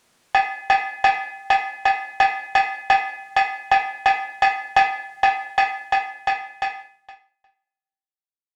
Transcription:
0.35 low agogo
0.70 low agogo
1.04 low agogo
1.50 low agogo
1.85 low agogo
2.20 low agogo
2.55 low agogo
2.90 low agogo
3.36 low agogo
3.71 low agogo
4.06 low agogo
4.42 low agogo
4.76 low agogo
5.23 low agogo
5.58 low agogo
5.92 low agogo
6.27 low agogo
6.62 low agogo
7.09 low agogo
7.44 low agogo

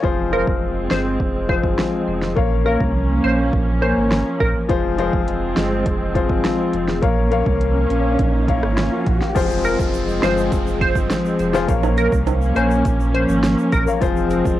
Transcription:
0.03 F1 F3 G#3 C4 F4 G#4 C5, kick
0.32 F3 F4 G#4 A#4 C5
0.47 F1, kick
0.91 G1 C5, snare
1.20 F1, kick
1.48 F3 F4 G#4 C5, kick
1.63 G1, kick
1.78 snare
2.07 F1
2.22 snare
2.36 A#1 A#3 C#4 A#4 C#5 F5, kick
2.65 A#3 A#4 C#5 F5
2.80 C2, kick
3.24 A#1 C5
3.53 A#1, kick
3.81 A#3 A#4 C5 C#5 G#5
3.97 G#1
4.11 snare
4.40 A#1 A#4, kick
4.69 F1 F3 G#3 C4 F4 G#4 C5, kick, closed hi-hat, riser
4.98 F3 F4 G#4 C5, closed hi-hat
5.13 F1, kick
5.28 closed hi-hat
5.57 G1, snare, closed hi-hat
5.86 F1, kick, closed hi-hat
6.14 F3 F4 G#4 C5, kick, closed hi-hat
6.29 G1, kick
6.44 snare, closed hi-hat
6.73 F1, closed hi-hat
6.88 snare
7.02 A#1 F3 A#3 C#4 A#4 C#5 F5, kick, closed hi-hat
7.31 A#3 A#4 C#5 F5, closed hi-hat
7.46 C2, kick
7.61 closed hi-hat
7.90 A#1, closed hi-hat
8.19 A#1, kick, closed hi-hat
8.47 A#3 A#4 C#5 F5, kick, closed hi-hat
8.63 G#1, cross-stick
8.77 snare, closed hi-hat
9.06 A#1, kick, closed hi-hat
9.21 snare
9.35 F1 F3 G#3 C4 F4 G#4 C5, kick, closed hi-hat, downlifter, shaker
9.50 shaker
9.64 A#4, closed hi-hat, shaker
9.79 F1, kick, shaker
9.94 closed hi-hat, shaker
10.09 shaker
10.22 G1 F3 F4 G#4 C5, snare, closed hi-hat, shaker
10.37 shaker
10.52 F1, kick, closed hi-hat, shaker
10.67 shaker
10.81 C5, kick, closed hi-hat
10.95 G1, kick, shaker
11.10 snare, closed hi-hat, shaker
11.25 shaker
11.39 F1, closed hi-hat, shaker
11.53 F3 F4 G#4 C5, snare, shaker
11.68 A#1 F3 A#3 C#4 A#4 C#5 F5, kick, closed hi-hat, shaker
11.83 high timbale, shaker
11.97 A#4, closed hi-hat, shaker
12.12 C2, kick, shaker
12.27 closed hi-hat, high timbale, shaker
12.41 shaker
12.55 A#1 A#3 A#4 C5 C#5 G#5, closed hi-hat, shaker
12.70 shaker
12.85 A#1, kick, closed hi-hat, shaker
13.00 shaker
13.14 C5, closed hi-hat
13.29 G#1, shaker
13.43 snare, closed hi-hat, shaker
13.58 shaker
13.72 A#1 A#4, kick, closed hi-hat, shaker
13.86 A#3 A#4 C#5 F5, shaker
14.01 F1 F3 G#3 C4 F4 G#4 C5, kick, closed hi-hat, shaker
14.16 shaker
14.30 closed hi-hat, shaker
14.45 F1, kick, shaker

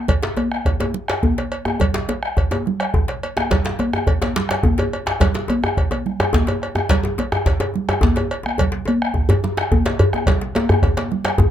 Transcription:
0.08 bombo low, cowbell, high conga, djembe bass, low conga
0.23 djembe slap, high conga
0.37 cowbell, djembe tone, high conga
0.52 bombo rim
0.65 bombo low, cowbell, djembe slap, djembe bass
0.80 bombo rim, cowbell, djembe slap, djembe tone, high conga
0.94 djembe slap, high conga, low conga
1.08 bombo rim, cowbell, djembe slap
1.23 bombo rim, bombo low, high conga, djembe bass
1.38 cowbell, djembe slap
1.52 cowbell
1.65 bombo rim, djembe tone, high conga
1.80 bombo low, cowbell, high conga, djembe bass, low conga
1.94 djembe slap, high conga
2.09 cowbell, djembe tone, high conga
2.23 bombo rim
2.37 bombo low, cowbell, djembe slap, djembe bass
2.51 bombo rim, cowbell, djembe slap, djembe tone, high conga
2.66 djembe slap, high conga, low conga
2.80 bombo rim, cowbell
2.94 bombo rim, bombo low, djembe tone, djembe bass
3.08 cowbell, djembe slap
3.23 cowbell, high conga
3.37 bombo rim, djembe slap, djembe tone, high conga
3.51 bombo low, cowbell, djembe slap, high conga, djembe bass, low conga
3.65 djembe slap, high conga
3.79 cowbell, djembe tone, high conga
3.93 bombo rim, djembe tone
4.07 bombo low, cowbell, djembe bass
4.21 bombo rim, cowbell, djembe slap, djembe tone, high conga
4.36 djembe slap, high conga, low conga
4.49 bombo rim, cowbell, djembe slap
4.63 bombo rim, bombo low, djembe tone, high conga, djembe bass
4.78 cowbell, djembe slap, djembe tone
4.93 cowbell, high conga
5.06 bombo rim, djembe slap, djembe tone
5.20 bombo rim, bombo low, cowbell, djembe slap, high conga, djembe bass, low conga
5.35 djembe slap, high conga
5.48 cowbell, djembe tone, high conga
5.63 bombo rim, djembe slap, djembe tone
5.77 bombo low, cowbell, djembe slap, djembe bass
5.91 cowbell, djembe slap, djembe tone, high conga
6.06 bombo rim, low conga
6.20 bombo rim, cowbell, djembe tone
6.33 bombo rim, bombo low, djembe slap, djembe tone, high conga, djembe bass
6.47 cowbell, djembe slap, djembe tone
6.62 bombo rim, cowbell
6.75 bombo rim, djembe tone, high conga
6.89 bombo low, cowbell, djembe slap, high conga, djembe bass, low conga
7.03 djembe slap, djembe tone, high conga
7.18 cowbell, djembe tone, high conga
7.32 bombo rim, djembe tone
7.46 bombo low, cowbell, djembe slap, djembe bass
7.60 bombo rim, cowbell, djembe slap, djembe tone
7.74 djembe slap, high conga, low conga
7.89 bombo rim, cowbell, djembe tone
8.01 bombo rim, bombo low, djembe slap, djembe tone, high conga, djembe bass
8.16 cowbell, djembe slap, djembe tone
8.31 cowbell, high conga
8.43 bombo rim, djembe tone, high conga
8.58 bombo low, cowbell, high conga, djembe bass, low conga
8.72 djembe slap, high conga
8.85 cowbell, djembe tone, high conga
9.02 bombo rim
9.14 bombo low, djembe slap, djembe bass
9.29 bombo rim, cowbell, djembe slap, djembe tone, high conga, djembe bass
9.43 djembe slap, djembe tone, high conga, low conga
9.57 bombo rim, djembe slap
9.72 bombo rim, bombo low, djembe tone, high conga, djembe bass
9.85 cowbell, djembe slap
9.99 cowbell, high conga, djembe bass
10.13 bombo rim, djembe tone, high conga
10.26 bombo low, cowbell, djembe slap, high conga, low conga, djembe bass
10.41 djembe slap, high conga
10.55 cowbell, djembe slap, high conga, djembe tone
10.69 bombo rim, djembe bass
10.82 bombo low, cowbell, djembe slap, djembe tone, djembe bass
10.97 bombo rim, cowbell, djembe slap, high conga, djembe tone
11.11 djembe slap, high conga, low conga
11.25 bombo rim, cowbell, djembe slap
11.38 bombo rim, bombo low, djembe tone, high conga, djembe bass

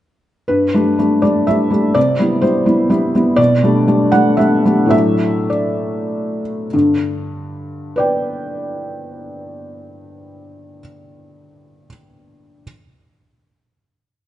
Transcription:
0.48 G2 B4
0.74 G3 A3 D4
0.99 G3 A3 D4
1.22 G3 A3 D4 D5
1.47 G3 A3 D4 E5
1.70 G3 A3 D4
1.95 C3 D5
2.20 G3 B3 E4
2.41 G3 B3 E4 C5
2.66 G3 B3 E4
2.90 G3 B3 E4
3.15 G3 B3 E4
3.36 B2 D5
3.63 G3 A3 D4
3.87 G3 A3 D4
4.12 G3 A3 D4 F#5
4.37 G3 A3 D4 E5
4.65 G3 A3 D4
4.86 A2 F#3 A3 D4
4.90 E5
5.50 D5
6.73 G2 D3
7.96 B4 D5 G5

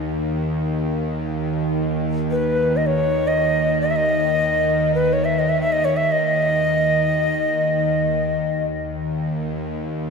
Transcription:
Already playing: D#2 D#3
2.31 B4
2.77 D#5
2.86 C#5
3.27 D#5
3.81 D#5
3.90 E5
3.96 D#5
4.95 B4
5.13 C#5
5.25 E5
5.39 D#5
5.49 E5
5.61 E5
5.72 D#5
5.85 C#5
5.97 E5
6.12 D#5
8.38 D#2 D#3

